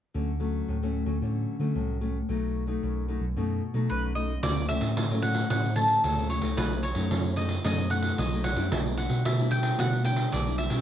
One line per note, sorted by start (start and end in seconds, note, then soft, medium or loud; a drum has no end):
0.14 0.60 D2 medium
0.14 0.65 D3 soft
0.14 0.30 F#3 soft
0.14 0.30 A3 soft
0.14 0.30 C#4 soft
0.40 0.76 F#3 medium
0.40 0.77 A3 soft
0.40 0.77 C#4 medium
0.68 1.02 D2 medium
0.68 1.19 A2 soft
0.83 1.04 F#3 soft
0.83 1.05 A3 medium
0.83 1.05 C#4 medium
1.06 1.18 D2 medium
1.06 1.16 F#3 medium
1.06 1.16 A3 medium
1.06 1.16 C#4 medium
1.22 1.44 A2 medium
1.22 1.73 D3 soft
1.22 1.58 F#3 soft
1.22 1.58 A3 soft
1.22 1.58 C#4 medium
1.59 1.72 D3 medium
1.59 1.97 F#3 soft
1.59 1.97 A3 medium
1.59 1.97 C#4 medium
1.75 2.21 C2 medium
1.75 2.26 A2 medium
2.01 2.17 F#3 soft
2.01 2.17 A3 soft
2.01 2.17 C#4 medium
2.29 2.74 B1 medium
2.29 2.80 B2 soft
2.29 2.65 F#3 soft
2.29 2.65 A3 soft
2.29 2.65 D#4 soft
2.67 3.04 F#3 medium
2.67 3.04 A3 medium
2.67 3.04 D#4 medium
2.82 3.17 B1 medium
2.82 3.34 F#2 medium
3.08 3.25 F#3 medium
3.08 3.25 A3 soft
3.08 3.25 D#4 medium
3.20 3.33 B1 medium
3.36 3.59 F#2 medium
3.36 3.87 B2 medium
3.36 3.62 F#3 soft
3.36 3.62 A3 soft
3.36 3.62 D#4 medium
3.74 3.86 B2 medium
3.74 4.11 F#3 medium
3.74 4.11 A3 medium
3.74 4.11 D#4 medium
3.90 4.35 B1 medium
3.90 4.41 F#2 medium
3.90 4.15 B4 medium
4.15 4.32 F#3 medium
4.15 4.32 A3 medium
4.15 4.32 D#4 medium
4.15 4.43 D#5 medium
4.43 4.78 D2 medium
4.43 4.94 D3 soft
4.43 4.59 F#3 soft
4.43 4.59 A3 medium
4.43 4.59 C#4 medium
4.43 4.68 D5 loud
4.43 pandeiro medium
4.57 pandeiro soft
4.68 5.05 F#3 medium
4.68 5.05 A3 soft
4.68 5.06 C#4 medium
4.68 5.25 E5 medium
4.68 pandeiro medium
4.81 4.93 A2 medium
4.81 pandeiro medium
4.96 5.48 A2 medium
4.96 5.42 A2 medium
4.96 pandeiro medium
5.11 5.46 F#3 medium
5.11 5.47 A3 medium
5.11 5.47 C#4 medium
5.11 pandeiro soft
5.22 5.49 F#5 medium
5.22 pandeiro medium
5.35 pandeiro medium
5.50 5.96 A2 medium
5.50 6.01 D3 medium
5.50 5.66 F#3 medium
5.50 5.66 A3 soft
5.50 5.66 C#4 medium
5.50 5.76 F#5 medium
5.50 pandeiro medium
5.64 pandeiro soft
5.76 6.02 F#3 soft
5.76 6.02 A3 medium
5.76 6.02 C#4 medium
5.76 6.01 A5 medium
5.76 pandeiro medium
5.88 pandeiro medium
6.04 6.38 D2 medium
6.04 6.55 A2 medium
6.04 6.29 A4 medium
6.04 pandeiro medium
6.18 6.40 F#3 medium
6.18 6.41 A3 medium
6.18 6.41 C#4 medium
6.18 pandeiro soft
6.30 6.55 C#5 medium
6.30 pandeiro medium
6.41 6.54 C#2 medium
6.41 6.79 F#3 medium
6.41 6.79 A3 medium
6.41 6.79 D#4 medium
6.41 pandeiro medium
6.57 6.92 B1 medium
6.57 7.08 B2 soft
6.57 6.83 B4 medium
6.57 pandeiro medium
6.71 pandeiro soft
6.83 7.34 C#5 medium
6.83 pandeiro medium
6.95 7.08 F#2 medium
6.95 7.32 F#3 medium
6.95 7.33 A3 medium
6.95 7.33 D#4 medium
6.95 pandeiro medium
7.11 7.56 F#2 medium
7.11 7.62 F#2 medium
7.11 pandeiro medium
7.25 pandeiro soft
7.36 7.53 F#3 medium
7.36 7.53 A3 soft
7.36 7.53 D#4 medium
7.36 7.64 D#5 medium
7.36 pandeiro medium
7.49 pandeiro medium
7.64 8.10 F#2 medium
7.64 8.15 B2 medium
7.64 7.80 F#3 soft
7.64 7.80 A3 medium
7.64 7.81 D#4 medium
7.64 7.90 D#5 loud
7.64 pandeiro medium
7.79 pandeiro soft
7.90 8.27 F#3 medium
7.90 8.27 A3 medium
7.90 8.27 D#4 medium
7.90 8.19 F#5 medium
7.90 pandeiro soft
8.02 pandeiro medium
8.18 8.52 B1 medium
8.18 8.69 F#2 medium
8.18 8.43 D#5 medium
8.18 pandeiro medium
8.32 8.55 F#3 medium
8.32 8.55 A3 medium
8.32 8.55 D#4 medium
8.32 pandeiro soft
8.44 8.69 F#5 medium
8.44 pandeiro medium
8.56 8.68 F#2 medium
8.56 8.97 G3 medium
8.56 8.97 D4 medium
8.56 8.97 E4 medium
8.56 pandeiro medium
8.72 9.06 B1 medium
8.72 9.23 B2 medium
8.72 8.79 E5 medium
8.72 pandeiro medium
8.86 pandeiro soft
8.97 9.34 G3 soft
8.97 9.34 D4 medium
8.97 9.35 E4 medium
8.97 9.23 F#5 medium
8.97 pandeiro medium
9.09 9.22 B2 medium
9.09 pandeiro medium
9.25 9.71 B2 medium
9.25 9.76 B2 medium
9.25 9.51 E5 medium
9.25 pandeiro medium
9.39 9.75 G3 medium
9.39 9.75 D4 medium
9.39 9.76 E4 medium
9.39 pandeiro soft
9.51 9.77 G5 loud
9.51 pandeiro medium
9.63 pandeiro medium
9.79 10.24 B2 medium
9.79 10.30 B2 soft
9.79 10.02 G3 medium
9.79 10.02 D4 soft
9.79 10.02 E4 medium
9.79 10.04 F#5 loud
9.79 pandeiro medium
9.93 pandeiro soft
10.04 10.31 G3 medium
10.04 10.31 D4 medium
10.04 10.31 E4 medium
10.04 10.30 G5 medium
10.04 pandeiro medium
10.16 pandeiro medium
10.32 10.67 B1 medium
10.32 10.81 B2 medium
10.32 10.58 D5 medium
10.32 pandeiro medium
10.47 10.69 G3 medium
10.47 10.69 D4 medium
10.47 10.69 E4 medium
10.47 pandeiro soft
10.58 10.81 E5 medium
10.58 pandeiro medium
10.70 10.81 B2 medium
10.70 10.81 G3 medium
10.70 10.81 C#4 medium
10.70 10.81 E4 medium
10.70 pandeiro medium